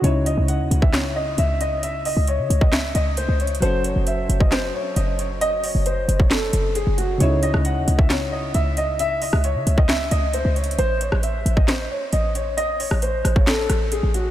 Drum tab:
HH |x-----x-----x-----x-----x-----------x-----x-----|x-----o-----x-----x-----x-----x-----x-----x-x-x-|x-----x-----x-----x-----x-----------x-----x-----|x-----o-----x-----x-----x-----x-----x-----x-----|
CP |------------------------x-----------------------|------------------------x-----------------------|------------------------x-----------------------|------------------------x-----------------------|
SD |------------------------o-----------------------|------------------------o-----------------------|------------------------o-----------------------|------------------------o-----------------------|
BD |---------------------o--------------------------|---------------------o--------------------------|---------------------o--------------------------|---------------------o--------------------------|

HH |x-----x-----x-----x-----x-----------x-----x-----|x-----o-----x-----x-----x-----x-----x-----x-x-x-|x-----x-----x-----x-----x-----------x-----x-----|x-----o-----x-----x-----x-----x-----x-----x-----|
CP |------------------------x-----------------------|------------------------x-----------------------|------------------------x-----------------------|------------------------x-----------------------|
SD |---------r--------------o-----------------------|---------r--------------o-----------------------|---------r--------------o-----------------------|---------r--------r-----o-----r-----------------|
BD |---------------------o--------------------------|---------------------o--------------------------|---------------------o--------------------------|---------------------o--------------------------|